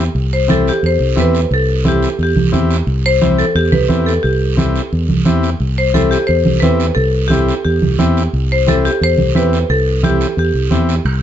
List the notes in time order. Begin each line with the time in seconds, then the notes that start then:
0.15 C2, long guiro
0.33 C5
0.48 C4 E4 G4 A4, high conga, short guiro
0.68 G4, short guiro
0.83 E2 C5, long guiro
1.00 C2
1.16 E2 C4 E4 G4, high conga, short guiro
1.20 B4
1.35 short guiro
1.51 C2 A4, long guiro
1.85 C4 E4 G4, high conga, short guiro
2.03 short guiro
2.19 E2, long guiro
2.23 G4
2.36 C2, high conga
2.52 E2 C4 E4 G4, high conga, short guiro
2.71 short guiro
2.87 C2, long guiro
3.06 C5
3.21 C4 E4 G4, high conga, short guiro
3.39 A4, short guiro
3.55 E2 G4, long guiro
3.72 C2 B4, high conga
3.89 E2 C4 E4 G4, high conga, short guiro
4.06 A4, short guiro
4.23 C2 G4, long guiro
4.57 C4 E4 G4, high conga, short guiro
4.76 short guiro
4.93 E2, long guiro
5.09 C2, high conga
5.25 E2 C4 E4 G4, high conga, short guiro
5.43 short guiro
5.60 C2, long guiro
5.78 C5
5.94 C4 E4 G4 A4, high conga, short guiro
6.11 G4, short guiro
6.27 E2 C5, long guiro
6.45 C2, high conga
6.60 E2 C4 E4 G4 B4, high conga, short guiro
6.80 short guiro
6.95 C2 A4, long guiro
7.28 C4 E4 G4, high conga, short guiro
7.48 short guiro
7.64 E2 G4, long guiro
7.82 C2, high conga
7.99 E2 C4 E4 G4, high conga, short guiro
8.17 short guiro
8.33 C2, long guiro
8.52 C5
8.67 C4 E4 G4 A4, high conga, short guiro
8.85 G4, short guiro
9.01 E2 C5, long guiro
9.18 C2, high conga
9.35 E2 C4 E4 G4 B4, high conga, short guiro
9.53 short guiro
9.70 C2 A4, long guiro
10.03 C4 E4 G4, high conga, short guiro
10.21 short guiro
10.37 E2 G4, long guiro
10.54 C2
10.71 E2 C4 E4 G4, high conga, short guiro
10.89 short guiro
11.05 C2, high timbale, long guiro